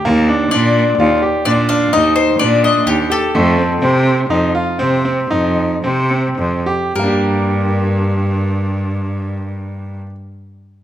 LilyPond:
<<
  \new Staff \with { instrumentName = "Mandolin" } { \time 7/4 \key g \minor \tempo 4 = 118 r4 d''2 d''8 f''8 ees''8 c''8 d''8 ees''8 g'8 a'8~ | a'1. r4 | bes'1.~ bes'4 | }
  \new Staff \with { instrumentName = "Grand piano" } { \time 7/4 \key g \minor bes8 d'8 d'4 f'8 g'8 d'8 d'8 ees'4 d'8 d'4 g'8 | a8 c'8 c'4 ees'8 f'8 c'8 c'8 ees'4 c'8 c'4 g'8 | <g bes d' g'>1.~ <g bes d' g'>4 | }
  \new Staff \with { instrumentName = "Cello" } { \clef bass \time 7/4 \key g \minor ees,4 bes,4 ees,8 r8 bes,4 ees,4 bes,4 ees,8 r8 | f,4 c4 f,8 r8 c4 f,4 c4 f,8 r8 | g,1.~ g,4 | }
>>